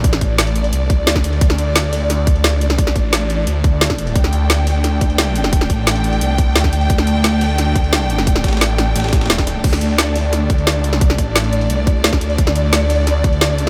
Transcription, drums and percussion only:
0.04 kick, closed hi-hat
0.13 snare
0.21 kick, closed hi-hat
0.38 snare, closed hi-hat
0.47 closed hi-hat
0.56 closed hi-hat
0.64 closed hi-hat
0.73 closed hi-hat
0.90 kick, closed hi-hat
1.07 snare, closed hi-hat
1.16 kick, snare, closed hi-hat
1.24 closed hi-hat
1.33 closed hi-hat
1.41 kick, closed hi-hat
1.50 snare
1.58 closed hi-hat
1.76 snare, closed hi-hat
1.93 snare, closed hi-hat, open hi-hat
2.10 snare, closed hi-hat
2.27 kick, closed hi-hat
2.36 closed hi-hat
2.44 snare, closed hi-hat
2.61 closed hi-hat
2.70 snare
2.78 kick, closed hi-hat
2.87 snare
2.96 kick, closed hi-hat
3.13 snare, closed hi-hat
3.30 closed hi-hat
3.47 closed hi-hat
3.64 kick, closed hi-hat
3.81 snare, closed hi-hat
3.90 kick, snare
3.98 closed hi-hat
4.07 closed hi-hat
4.16 kick, closed hi-hat
4.24 snare
4.33 closed hi-hat
4.50 snare, closed hi-hat
4.67 snare, closed hi-hat, open hi-hat
4.84 snare, closed hi-hat
5.01 kick, closed hi-hat
5.10 closed hi-hat
5.18 snare, closed hi-hat
5.36 closed hi-hat
5.44 snare
5.53 kick, closed hi-hat
5.61 snare
5.70 kick, closed hi-hat
5.87 snare, closed hi-hat
5.96 closed hi-hat
6.04 closed hi-hat
6.13 closed hi-hat
6.21 closed hi-hat
6.38 kick, closed hi-hat
6.56 snare, closed hi-hat
6.64 kick, snare, closed hi-hat
6.73 closed hi-hat
6.81 closed hi-hat
6.90 kick, closed hi-hat
6.98 snare
7.07 closed hi-hat
7.24 snare, closed hi-hat
7.41 snare, closed hi-hat, open hi-hat
7.58 snare, closed hi-hat
7.76 kick, closed hi-hat
7.84 closed hi-hat
7.93 snare, closed hi-hat
8.10 closed hi-hat
8.18 snare
8.27 kick, closed hi-hat
8.36 snare
8.44 kick, snare, closed hi-hat
8.48 snare, closed hi-hat
8.53 snare, closed hi-hat
8.57 snare, closed hi-hat
8.61 snare, closed hi-hat
8.78 snare, closed hi-hat
8.96 snare, closed hi-hat
9.00 snare, closed hi-hat
9.04 snare, closed hi-hat
9.09 snare, closed hi-hat
9.13 kick, snare, closed hi-hat
9.21 snare, closed hi-hat
9.26 snare, closed hi-hat
9.30 snare, closed hi-hat
9.38 kick, snare, closed hi-hat
9.47 snare, closed hi-hat
9.64 kick, closed hi-hat, crash
9.73 snare
9.81 closed hi-hat
9.98 snare, closed hi-hat
10.16 snare, closed hi-hat, open hi-hat
10.33 snare, closed hi-hat
10.50 kick, closed hi-hat
10.58 closed hi-hat
10.67 snare, closed hi-hat
10.84 closed hi-hat
10.93 snare
11.01 kick, closed hi-hat
11.10 snare
11.18 kick, closed hi-hat
11.36 snare, closed hi-hat
11.44 closed hi-hat
11.53 closed hi-hat
11.61 closed hi-hat
11.70 closed hi-hat
11.87 kick, closed hi-hat
12.04 snare, closed hi-hat
12.13 kick, snare, closed hi-hat
12.21 closed hi-hat
12.30 closed hi-hat
12.38 kick, closed hi-hat
12.47 snare
12.56 closed hi-hat
12.73 snare, closed hi-hat
12.90 snare, closed hi-hat, open hi-hat
13.07 snare, closed hi-hat
13.24 kick, closed hi-hat
13.33 closed hi-hat
13.41 snare, closed hi-hat
13.58 closed hi-hat

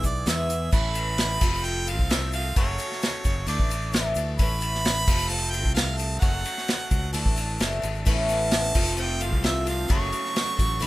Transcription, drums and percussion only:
0.03 kick, closed hi-hat, shaker
0.16 shaker
0.27 snare, closed hi-hat, shaker
0.50 closed hi-hat, shaker
0.72 kick, crash, shaker
0.95 ride, shaker
1.18 snare, ride, shaker
1.41 kick, crash, shaker
1.65 shaker
1.87 ride, shaker
1.99 kick, shaker
2.10 snare, ride, shaker
2.33 ride, shaker
2.56 kick, ride, shaker
2.78 ride, shaker
2.90 snare, shaker
3.01 snare, ride, shaker
3.25 kick, ride, shaker
3.48 ride, shaker
3.59 kick
3.70 ride, shaker
3.81 shaker
3.93 snare, ride, shaker
4.15 ride, shaker
4.38 kick, ride, shaker
4.61 ride, shaker
4.73 snare, shaker
4.85 snare, ride, shaker
5.07 kick, crash, shaker
5.30 shaker
5.53 ride, shaker
5.65 kick
5.76 snare, ride, shaker
5.99 ride, shaker
6.22 kick, ride, shaker
6.45 ride, shaker
6.57 snare, shaker
6.68 snare, ride, shaker
6.91 kick, ride, shaker
7.14 ride, shaker
7.26 kick
7.37 ride, shaker
7.49 shaker
7.60 snare, ride, shaker
7.83 ride, shaker
7.95 shaker
8.06 kick, crash, shaker
8.29 ride, shaker
8.41 shaker
8.51 snare, ride, shaker
8.74 kick, crash, shaker
8.98 shaker
9.21 ride, shaker
9.33 kick, shaker
9.44 snare, ride, shaker
9.67 ride, shaker
9.90 kick, ride, shaker
10.13 ride, shaker
10.25 snare, shaker
10.36 snare, ride, shaker
10.59 kick, ride, shaker
10.82 ride, shaker

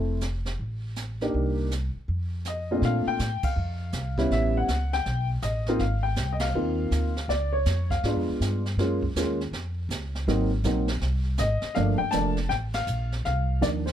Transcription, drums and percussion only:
0.21 snare, hi-hat pedal
0.45 snare
0.59 brush sweep
0.96 snare, hi-hat pedal
1.21 snare
1.34 brush sweep
1.71 snare, hi-hat pedal
2.08 brush sweep
2.45 snare, hi-hat pedal
2.83 brush sweep, snare
3.19 snare, hi-hat pedal
3.43 kick, ride
3.57 brush sweep
3.92 snare, hi-hat pedal
4.18 kick, snare
4.31 brush sweep, snare
4.68 snare, hi-hat pedal
4.93 snare
5.06 brush sweep, snare
5.42 snare, hi-hat pedal
5.66 snare
5.79 brush sweep, snare
6.16 snare, hi-hat pedal
6.39 snare, ride
6.54 brush sweep
6.91 snare, hi-hat pedal
7.17 snare
7.29 brush sweep, snare
7.66 snare, hi-hat pedal
7.90 kick, snare
8.04 brush sweep, snare
8.41 snare, hi-hat pedal
8.66 snare
8.79 brush sweep, snare
9.03 kick
9.16 snare, hi-hat pedal
9.41 snare
9.53 brush sweep, snare
9.90 snare, hi-hat pedal
10.15 snare
10.28 brush sweep, snare
10.64 snare, hi-hat pedal
10.88 snare
11.01 brush sweep, snare
11.38 snare, hi-hat pedal
11.62 snare
11.75 brush sweep, snare
12.12 snare, hi-hat pedal
12.37 snare
12.50 brush sweep, snare
12.73 snare, ride
12.87 hi-hat pedal
13.12 snare
13.25 brush sweep, snare
13.62 snare, hi-hat pedal
13.87 snare

